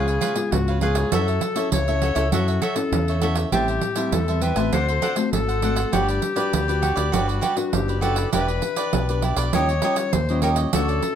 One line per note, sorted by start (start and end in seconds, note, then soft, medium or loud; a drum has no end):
0.00 0.18 C#2 medium
0.00 0.49 C#3 medium
0.00 0.32 G#3 medium
0.00 0.32 B3 medium
0.00 0.32 F4 medium
0.00 0.53 G#4 medium
0.07 0.20 B4 soft
0.07 0.21 C#5 soft
0.07 0.21 F5 soft
0.07 pandeiro soft
0.21 0.34 F4 medium
0.21 0.34 B4 medium
0.21 0.35 C#5 medium
0.21 0.35 F5 medium
0.21 pandeiro medium
0.35 0.76 G#3 medium
0.35 0.76 B3 medium
0.35 0.77 F4 medium
0.35 muted cavaquinho stroke soft
0.35 pandeiro medium
0.52 1.03 C#2 medium
0.52 1.09 G#2 medium
0.52 0.81 F#4 medium
0.52 pandeiro medium
0.68 0.81 B4 soft
0.68 0.81 C#5 soft
0.68 0.82 F5 soft
0.68 pandeiro soft
0.81 1.07 G#3 medium
0.81 1.07 B3 medium
0.81 0.96 F4 medium
0.81 1.08 F4 medium
0.81 1.13 G#4 medium
0.81 0.96 B4 medium
0.81 0.96 C#5 medium
0.81 0.95 F5 medium
0.81 pandeiro medium
0.95 1.11 B4 soft
0.95 1.11 C#5 soft
0.95 1.10 F5 soft
0.95 pandeiro medium
1.12 1.38 F#2 medium
1.12 1.69 F#3 medium
1.12 1.40 C#4 medium
1.12 1.41 E4 medium
1.12 1.26 F#4 medium
1.12 1.72 A4 medium
1.12 1.41 A4 medium
1.12 1.27 A4 medium
1.12 1.27 C#5 medium
1.12 1.27 E5 medium
1.12 pandeiro medium
1.28 1.41 A4 soft
1.28 1.41 C#5 soft
1.28 1.41 E5 soft
1.28 pandeiro soft
1.41 muted cavaquinho stroke soft
1.41 pandeiro medium
1.55 1.82 C#4 medium
1.55 1.82 E4 medium
1.55 1.82 A4 medium
1.55 1.86 A4 medium
1.55 1.86 C#5 medium
1.55 1.85 E5 medium
1.55 pandeiro medium
1.72 2.11 C#2 medium
1.72 2.30 C#3 medium
1.72 2.28 C#5 medium
1.72 pandeiro medium
1.88 2.13 C#4 medium
1.88 2.13 E4 medium
1.88 2.13 A4 medium
1.88 2.01 A4 soft
1.88 2.02 C#5 soft
1.88 2.01 E5 soft
1.88 pandeiro soft
2.02 2.16 F#4 soft
2.02 2.16 A4 medium
2.02 2.15 C#5 medium
2.02 2.14 E5 medium
2.02 pandeiro medium
2.15 2.29 C#2 medium
2.15 2.27 C#4 medium
2.15 2.27 E4 medium
2.15 2.27 A4 medium
2.15 2.31 A4 medium
2.15 2.31 C#5 medium
2.15 2.30 E5 medium
2.15 pandeiro medium
2.32 2.58 F#2 medium
2.32 2.89 F#3 medium
2.32 2.60 C#4 medium
2.32 2.60 E4 medium
2.32 2.46 F#4 medium
2.32 2.63 F#4 medium
2.32 2.61 A4 medium
2.32 2.47 A4 medium
2.32 2.47 C#5 medium
2.32 2.46 E5 medium
2.32 pandeiro medium
2.48 2.61 A4 soft
2.48 2.62 C#5 soft
2.48 2.61 E5 soft
2.48 pandeiro soft
2.62 2.75 F#4 medium
2.62 3.25 A4 medium
2.62 2.75 A4 medium
2.62 2.75 C#5 medium
2.62 2.75 E5 medium
2.62 pandeiro medium
2.76 3.17 C#4 medium
2.76 3.17 E4 medium
2.76 3.17 A4 medium
2.76 muted cavaquinho stroke soft
2.76 pandeiro medium
2.92 3.43 E2 medium
2.92 3.50 C#3 medium
2.92 pandeiro medium
3.08 3.21 A4 soft
3.08 3.21 C#5 soft
3.08 3.22 E5 soft
3.08 pandeiro soft
3.21 3.48 C#4 medium
3.21 3.48 E4 medium
3.21 3.36 F#4 medium
3.21 3.36 A4 medium
3.21 3.48 A4 medium
3.21 3.36 C#5 medium
3.21 3.35 E5 medium
3.21 pandeiro medium
3.35 3.51 A4 soft
3.35 3.51 C#5 soft
3.35 3.51 E5 soft
3.35 pandeiro medium
3.52 3.78 A1 medium
3.52 4.10 A2 medium
3.52 3.93 G3 medium
3.52 3.93 C4 medium
3.52 3.93 E4 medium
3.52 3.66 G4 medium
3.52 4.14 G4 medium
3.52 3.67 C5 medium
3.52 3.67 E5 medium
3.52 3.67 A5 medium
3.52 pandeiro medium
3.68 3.81 C5 soft
3.68 3.82 E5 soft
3.68 3.82 A5 medium
3.68 pandeiro soft
3.81 muted cavaquinho stroke soft
3.81 pandeiro medium
3.96 4.22 G3 medium
3.96 4.22 C4 medium
3.96 4.22 E4 medium
3.96 4.27 C5 soft
3.96 4.26 E5 medium
3.96 4.26 A5 medium
3.96 pandeiro medium
4.12 4.51 E2 loud
4.12 4.70 E3 medium
4.12 4.43 A4 medium
4.12 pandeiro medium
4.28 4.53 G3 medium
4.28 4.53 C4 medium
4.28 4.53 E4 medium
4.28 4.41 C5 soft
4.28 4.42 E5 soft
4.28 4.42 A5 medium
4.28 pandeiro soft
4.42 4.56 G4 medium
4.42 4.74 B4 medium
4.42 4.56 C5 medium
4.42 4.56 E5 medium
4.42 4.55 A5 medium
4.42 pandeiro medium
4.56 4.69 A1 medium
4.56 5.12 A3 medium
4.56 5.12 C4 medium
4.56 5.12 F#4 medium
4.56 4.72 C5 medium
4.56 4.71 E5 medium
4.56 4.71 A5 medium
4.56 pandeiro medium
4.72 4.98 D2 medium
4.72 5.30 D3 medium
4.72 4.86 D4 medium
4.72 4.87 A4 medium
4.72 5.32 C5 medium
4.72 4.87 C5 medium
4.72 4.87 F#5 medium
4.72 pandeiro medium
4.88 5.01 A4 soft
4.88 5.02 C5 soft
4.88 5.02 F#5 soft
4.88 pandeiro soft
5.02 5.15 D4 medium
5.02 5.16 A4 medium
5.02 5.15 C5 medium
5.02 5.16 F#5 medium
5.02 pandeiro medium
5.16 5.57 A3 medium
5.16 5.58 C4 medium
5.16 5.58 F#4 medium
5.16 muted cavaquinho stroke soft
5.16 pandeiro medium
5.32 5.84 G#1 medium
5.32 5.94 A4 loud
5.32 pandeiro medium
5.48 5.62 A4 soft
5.48 5.63 C5 soft
5.48 5.62 F#5 soft
5.48 pandeiro soft
5.62 5.88 A3 medium
5.62 5.88 C4 soft
5.62 5.77 D4 medium
5.62 5.88 F#4 medium
5.62 5.76 A4 medium
5.62 5.76 C5 medium
5.62 5.74 F#5 medium
5.62 pandeiro medium
5.76 5.92 A4 soft
5.76 5.91 C5 soft
5.76 5.91 F#5 soft
5.76 pandeiro medium
5.92 6.19 G1 medium
5.92 6.50 G3 medium
5.92 6.34 D4 medium
5.92 6.07 F#4 medium
5.92 7.15 G4 loud
5.92 6.07 G4 medium
5.92 6.07 B4 medium
5.92 6.34 B4 medium
5.92 6.07 D5 medium
5.92 pandeiro medium
6.09 6.21 G4 soft
6.09 6.21 B4 soft
6.09 6.21 D5 soft
6.09 pandeiro soft
6.22 muted cavaquinho stroke soft
6.22 pandeiro medium
6.36 6.62 D4 medium
6.36 6.62 F#4 medium
6.36 6.67 G4 medium
6.36 6.66 B4 medium
6.36 6.63 B4 medium
6.36 6.66 D5 medium
6.36 pandeiro medium
6.53 6.92 D2 loud
6.53 7.10 D3 medium
6.53 pandeiro medium
6.68 6.94 D4 medium
6.68 6.94 F#4 medium
6.68 6.81 G4 soft
6.68 6.82 B4 soft
6.68 6.94 B4 medium
6.68 6.82 D5 medium
6.68 pandeiro soft
6.82 6.96 F#4 medium
6.82 6.96 G4 medium
6.82 6.95 B4 medium
6.82 6.94 D5 soft
6.82 pandeiro medium
6.96 7.10 D2 medium
6.96 7.08 D4 medium
6.96 7.08 F#4 medium
6.96 7.12 G4 medium
6.96 7.11 B4 medium
6.96 7.08 B4 medium
6.96 7.11 D5 medium
6.96 pandeiro medium
7.12 7.39 G1 medium
7.12 7.70 G3 medium
7.12 7.53 D4 medium
7.12 7.26 F#4 medium
7.12 7.53 F#4 medium
7.12 7.75 F#4 medium
7.12 7.27 G4 medium
7.12 7.27 B4 medium
7.12 7.54 B4 medium
7.12 7.27 D5 medium
7.12 pandeiro medium
7.28 7.41 G4 soft
7.28 7.41 B4 soft
7.28 7.42 D5 medium
7.28 pandeiro soft
7.41 7.55 F#4 medium
7.41 7.56 G4 medium
7.41 7.56 B4 medium
7.41 7.56 D5 medium
7.41 pandeiro medium
7.56 7.98 D4 medium
7.56 7.98 F#4 medium
7.56 7.98 B4 medium
7.56 muted cavaquinho stroke soft
7.56 pandeiro medium
7.73 8.24 F#1 medium
7.73 8.30 D3 medium
7.73 8.03 G4 medium
7.73 pandeiro medium
7.88 8.01 G4 soft
7.88 8.01 B4 soft
7.88 8.01 D5 soft
7.88 pandeiro soft
8.01 8.28 D4 medium
8.01 8.16 F#4 medium
8.01 8.28 F#4 medium
8.01 8.17 G4 medium
8.01 8.32 A4 medium
8.01 8.16 B4 medium
8.01 8.28 B4 medium
8.01 8.15 D5 medium
8.01 pandeiro medium
8.16 8.32 G4 soft
8.16 8.32 B4 soft
8.16 8.31 D5 soft
8.16 pandeiro medium
8.32 8.59 E1 medium
8.32 8.90 E3 medium
8.32 8.50 D4 medium
8.32 8.47 E4 medium
8.32 8.51 G4 medium
8.32 8.47 G4 medium
8.32 9.22 B4 loud
8.32 8.51 B4 medium
8.32 8.47 B4 medium
8.32 8.47 D5 medium
8.32 pandeiro medium
8.48 8.62 G4 soft
8.48 8.62 B4 soft
8.48 8.62 D5 medium
8.48 pandeiro soft
8.62 9.03 D4 medium
8.62 9.03 G4 medium
8.62 9.03 B4 medium
8.62 muted cavaquinho stroke soft
8.62 pandeiro medium
8.76 9.07 G4 medium
8.76 9.07 B4 medium
8.76 9.06 D5 medium
8.76 pandeiro medium
8.93 9.32 B1 loud
8.93 9.50 B2 medium
8.93 pandeiro medium
9.09 9.49 D4 medium
9.09 9.49 G4 medium
9.09 9.22 G4 soft
9.09 9.49 B4 medium
9.09 9.22 B4 soft
9.09 9.23 D5 medium
9.09 pandeiro soft
9.22 9.37 E4 soft
9.22 9.37 G4 medium
9.22 9.36 B4 medium
9.22 9.36 D5 medium
9.22 pandeiro medium
9.36 9.50 B1 medium
9.36 9.52 G4 medium
9.36 9.52 B4 medium
9.36 9.51 D5 medium
9.36 pandeiro medium
9.53 9.79 D#2 medium
9.53 10.11 D#3 medium
9.53 9.71 G3 medium
9.53 9.71 C#4 medium
9.53 9.68 D#4 medium
9.53 9.71 F4 medium
9.53 9.68 G4 medium
9.53 10.14 C#5 loud
9.53 9.68 C#5 medium
9.53 9.68 D#5 medium
9.53 pandeiro medium
9.69 9.83 G4 soft
9.69 9.83 C#5 soft
9.69 9.83 D#5 soft
9.69 pandeiro soft
9.82 10.11 G3 medium
9.82 10.11 C#4 medium
9.82 9.96 D#4 medium
9.82 10.12 F4 medium
9.82 9.96 G4 medium
9.82 9.96 C#5 medium
9.82 9.97 D#5 medium
9.82 pandeiro medium
9.96 muted cavaquinho stroke soft
9.96 pandeiro medium
10.13 10.65 D#2 medium
10.13 10.71 A#2 medium
10.13 10.42 C5 loud
10.13 pandeiro medium
10.29 10.69 G3 medium
10.29 10.69 C#4 medium
10.29 10.70 F4 medium
10.29 10.42 G4 soft
10.29 10.42 C#5 soft
10.29 10.43 D#5 soft
10.29 pandeiro soft
10.42 10.57 D#4 medium
10.42 10.57 G4 medium
10.42 10.49 A#4 loud
10.42 10.56 C#5 medium
10.42 10.55 D#5 medium
10.42 pandeiro medium
10.56 10.72 G4 soft
10.56 10.72 C#5 soft
10.56 10.71 D#5 soft
10.56 pandeiro medium
10.73 10.99 D2 medium
10.73 11.15 D3 medium
10.73 11.14 A3 medium
10.73 11.14 C#4 medium
10.73 10.87 F#4 medium
10.73 11.14 F#4 medium
10.73 11.15 A4 loud
10.73 10.87 A4 medium
10.73 10.88 C#5 medium
10.73 10.87 D5 medium
10.73 pandeiro medium
10.88 11.02 A4 soft
10.88 11.02 C#5 soft
10.88 11.02 D5 soft
10.88 pandeiro soft
11.02 muted cavaquinho stroke soft
11.02 pandeiro medium